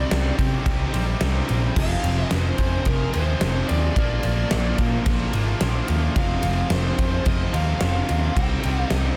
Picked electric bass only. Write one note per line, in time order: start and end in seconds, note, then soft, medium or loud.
0.12 0.29 C2 medium
0.39 0.57 C3 medium
0.66 0.84 C2 loud
0.94 1.12 A#1 loud
1.22 1.39 C2 medium
1.50 1.67 A#1 medium
1.77 1.94 F1 loud
2.04 2.22 F1 medium
2.33 2.50 F1 medium
2.59 2.76 F2 medium
2.86 3.04 F1 loud
3.15 3.33 D#2 loud
3.42 3.60 F1 medium
3.71 3.88 D#2 loud
3.97 4.14 A#1 loud
4.25 4.42 A#1 loud
4.53 4.70 A#1 medium
4.79 4.97 A#2 medium
5.07 5.24 A#1 loud
5.35 5.52 G#1 medium
5.62 5.79 A#1 medium
5.89 6.07 D#2 loud
6.16 6.34 F1 loud
6.43 6.61 F1 loud
6.71 6.89 F1 loud
6.99 7.17 F2 medium
7.27 7.44 F1 loud
7.54 7.72 D#2 medium
7.82 8.00 F1 medium
8.10 8.27 D#2 medium
8.37 8.54 C2 loud
8.65 8.82 C2 loud
8.91 9.09 C2 loud